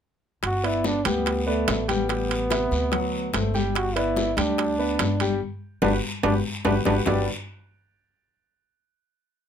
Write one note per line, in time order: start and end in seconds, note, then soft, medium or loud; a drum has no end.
0.43 1.02 G1 medium
0.43 0.67 F#4 loud
0.43 high bongo medium
0.43 high conga soft
0.43 high timbale medium
0.43 long guiro medium
0.63 0.98 B3 medium
0.63 0.87 E4 medium
0.63 0.98 B4 medium
0.63 0.98 D5 medium
0.63 high conga soft
0.63 high timbale medium
0.84 1.09 D4 medium
0.84 high bongo medium
0.84 high conga medium
0.84 short guiro medium
1.05 1.64 D2 medium
1.05 1.40 G3 medium
1.05 1.49 B3 loud
1.05 1.40 G4 medium
1.05 1.40 G5 medium
1.05 high conga medium
1.05 high timbale medium
1.05 short guiro medium
1.26 high bongo medium
1.26 high conga soft
1.26 high timbale medium
1.26 long guiro medium
1.47 1.89 A3 medium
1.47 1.81 B3 medium
1.47 1.81 B4 medium
1.47 1.82 D5 medium
1.47 high conga soft
1.68 2.66 A1 medium
1.68 high bongo medium
1.68 low bongo medium
1.68 high conga medium
1.68 high timbale medium
1.68 low timbale medium
1.68 short guiro medium
1.88 2.06 G3 medium
1.88 3.51 B3 loud
1.88 2.06 G4 medium
1.88 2.06 G5 medium
1.88 high conga medium
1.88 high timbale medium
1.88 short guiro medium
2.09 2.44 G3 medium
2.09 2.44 G4 medium
2.09 2.44 G5 medium
2.09 high bongo medium
2.09 high conga soft
2.09 high timbale medium
2.09 long guiro medium
2.30 high bongo soft
2.30 high conga soft
2.30 high timbale medium
2.50 2.85 C3 medium
2.50 2.85 B4 medium
2.50 2.85 E5 medium
2.50 high bongo medium
2.50 high conga medium
2.50 high timbale medium
2.50 short guiro medium
2.71 3.30 D2 medium
2.71 high bongo soft
2.71 short guiro medium
2.92 3.26 F#3 medium
2.92 3.27 F#4 medium
2.92 3.27 F#5 medium
2.92 high bongo medium
2.92 high timbale medium
2.92 long guiro medium
3.14 high conga soft
3.33 4.32 G1 medium
3.33 3.51 A3 medium
3.33 3.52 A4 medium
3.33 3.52 C5 medium
3.33 high bongo medium
3.33 low bongo medium
3.33 high conga medium
3.33 high timbale medium
3.33 short guiro medium
3.54 3.89 G3 medium
3.54 3.89 G4 medium
3.54 3.89 G5 medium
3.54 high bongo soft
3.54 high conga medium
3.54 short guiro medium
3.75 3.97 F#4 medium
3.75 high bongo medium
3.75 high timbale medium
3.75 long guiro medium
3.96 4.30 B3 medium
3.96 4.39 E4 loud
3.96 4.30 B4 medium
3.96 4.30 D5 medium
3.96 high conga soft
3.96 high timbale medium
4.16 high bongo medium
4.16 high conga medium
4.16 short guiro medium
4.37 4.96 D2 medium
4.37 4.72 G3 medium
4.37 5.41 D4 medium
4.37 4.72 G4 medium
4.37 4.72 G5 medium
4.37 high conga medium
4.37 high timbale medium
4.37 short guiro medium
4.57 high bongo medium
4.57 high conga soft
4.57 high timbale medium
4.57 long guiro medium
4.78 5.13 B3 medium
4.78 5.13 B4 medium
4.78 5.14 D5 medium
4.78 high conga soft
4.99 5.38 G1 medium
4.99 high bongo medium
4.99 low bongo medium
4.99 high conga medium
4.99 high timbale medium
4.99 short guiro medium
5.20 5.38 G3 medium
5.20 5.38 G4 medium
5.20 5.38 G5 medium
5.20 high conga medium
5.20 high timbale medium
5.20 short guiro medium
5.82 5.98 G1 medium
5.82 5.93 D4 medium
5.82 5.96 F#4 medium
5.82 5.96 G4 medium
5.82 5.96 B4 medium
5.82 low bongo medium
5.82 high conga medium
5.82 high timbale medium
5.82 long guiro medium
6.23 6.39 G1 medium
6.23 6.34 D4 medium
6.23 6.37 F#4 medium
6.23 6.37 G4 medium
6.23 6.37 B4 medium
6.23 low bongo medium
6.23 high conga loud
6.23 high timbale loud
6.23 long guiro medium
6.65 6.81 G1 medium
6.65 6.76 D4 medium
6.65 6.78 F#4 medium
6.65 6.78 G4 medium
6.65 6.78 B4 medium
6.65 low bongo loud
6.65 high conga medium
6.65 high timbale loud
6.65 long guiro medium
6.85 7.02 G1 medium
6.85 6.96 D4 medium
6.85 6.99 F#4 medium
6.85 6.99 G4 medium
6.85 6.99 B4 medium
6.85 low bongo medium
6.85 high conga medium
6.85 high timbale medium
6.85 long guiro medium
7.05 7.26 G1 medium
7.05 7.25 G3 medium
7.05 7.26 D4 medium
7.05 7.26 F#4 medium
7.05 7.26 G4 medium
7.05 7.26 B4 medium
7.05 7.26 D5 medium
7.05 low bongo medium
7.05 low conga medium
7.05 low timbale medium
7.05 long guiro medium